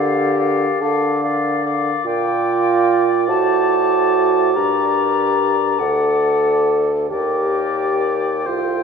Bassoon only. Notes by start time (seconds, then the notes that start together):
Already playing: D3
0.81 D3
2.06 A#2
3.28 A2
4.56 G2
5.81 D2
7.11 D#2
8.46 C2